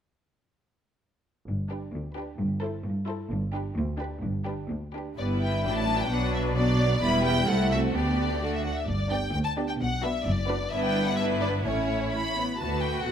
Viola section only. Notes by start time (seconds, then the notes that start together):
1.71 D4
2.16 D4
2.62 E4
3.08 E4
3.54 D4
4.00 D4
4.46 D4
4.94 D4
5.18 G3 B3
5.64 F#3 D4
6.10 F#3 D4
6.57 F#3 B3
7.03 G3 B3
7.48 A3 C4
7.94 B3 D4
8.42 A3 D4
9.10 B3 D4
9.57 B3 D4
10.03 B3 D4
10.48 B3 D4
10.72 B3 D4
11.18 B3 D4
11.66 A3 C#4
12.13 A3
12.37 B3
12.60 F#4